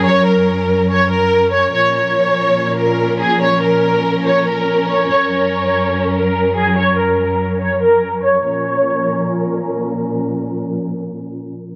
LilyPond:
<<
  \new Staff \with { instrumentName = "Violin section" } { \time 4/4 \key bes \minor \tempo 4 = 143 des''8 bes'4. des''8 bes'4 des''8 | des''8 des''2 bes'4 aes'8 | des''8 bes'4. des''8 bes'4 des''8 | des''8 des''2 bes'4 aes'8 |
des''8 bes'4. des''8 bes'4 des''8 | des''2. r4 | r1 | }
  \new Staff \with { instrumentName = "String section" } { \clef bass \time 4/4 \key bes \minor << { <des' bes'>1 | <des' bes'>1~ | <des' bes'>1~ | <des' bes'>1~ |
<des' bes'>1 | <bes, f des' bes'>1~ | <bes, f des' bes'>1 | } \\ { <ges, ges>1 | <bes, f>1~ | <bes, f>1 | <ges, ges>1~ |
<ges, ges>1 | r1 | r1 | } >> }
>>